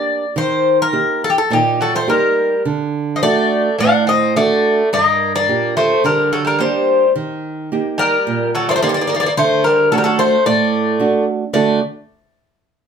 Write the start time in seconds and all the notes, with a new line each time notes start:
Already playing: A#3 D4 G4 D5
0.36 D#3 C5
0.82 A#4
0.93 A#3 D#4 G4
1.24 A4
1.30 G4
1.38 A4
1.50 A#2 D#3 G4
1.81 F#3 A4
1.95 A3 C5
2.07 G3 A#3 D#4 G4 A#4
2.65 D3
3.16 C4 D#5
3.22 A3 D4 F#4 D5
3.79 A2 D4 F#5
4.07 C4 D#5
4.36 A3 D4 F#4 D5
4.93 G2 A#3 D#5
5.35 A#3 D5
5.48 A#2 D4 G4
5.77 A3 C5
6.04 D3 G3 A#4
6.33 F#3 A4
6.45 G3 A#4
6.59 G3 A#3 D4 G4 C5
7.16 D#3
7.72 A#3 D#4 G4
7.98 G3 A#4
8.27 A#2
8.55 F#3 A4
8.69 A3 A#3 C5 D5
8.76 A3 C5
8.82 A#3 D#4 G4 D5
8.89 A#3 D5
8.94 A#3 D5
9.01 A#3 D5
9.07 A#3 D5
9.14 A#3 D5
9.20 A#3 D5
9.26 A#3 D5
9.37 D3 A3 C5
9.64 G3 A#4
9.92 F#3 A3 D4 F#4 A4
9.98 G3 A#4
10.04 F#3 A4
10.19 A3 C5
10.46 A2 A3 D5
11.00 A3 D4 F#4
11.53 D3 A3 D4 F#4 A4 D5